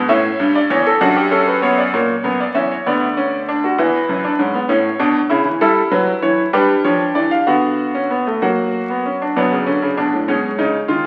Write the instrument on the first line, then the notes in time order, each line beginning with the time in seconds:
grand piano
0.09 A2 C#4 C#5 E5
0.40 G2
0.55 D5
0.70 E2 C#5
0.86 A4
1.01 F#2 D4 F#4 F#5
1.16 G4
1.31 C#4 A4
1.48 B4
1.62 B3 C#5
1.78 D5
1.94 A#2 A#3 C#5
2.24 F#2 B3
2.40 D5
2.54 E2 C#4 E5
2.71 C#5
2.86 D2 B3 D5
3.17 C#4
3.48 D4
3.64 F#4
3.78 E2 E4 B4
4.09 F#2
4.24 D4
4.39 G#2 C#4
4.54 B3
4.69 A2 C#4 C#5
4.99 B2 D4
5.30 C#3 E4
5.45 E3
5.61 G3 E4 A4
5.91 F#3 B4
6.22 E3 C#5
6.53 G3 D4 G4 B4
6.84 F3 C#5
7.15 E3 D5
7.31 F5
7.47 D3 B3 F#4 F#5
7.95 C#4
8.10 B3
8.27 A3
8.42 F#3 A#3 F#4 F#5
8.90 B3
9.06 C#4
9.22 D4
9.36 B2 F#3 B3 D5
9.52 C#3
9.66 D3 C#4
9.82 C#3
9.97 B2 D4
10.13 A2
10.28 B2 G#3 C#4 C#5
10.58 C#3 D#4
10.88 D#3 F4